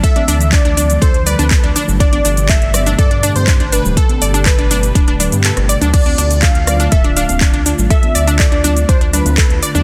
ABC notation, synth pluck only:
X:1
M:4/4
L:1/16
Q:1/4=122
K:Ddor
V:1 name="Synth pluck"
A D D z D D D z A z d D A D D z | D D D z A z d D A D D z D D D z | A z d D A D D z D D D z A z d D | D D D z A z d D A D D z D D D z |
A z d D A D D z D D D z A z d D |]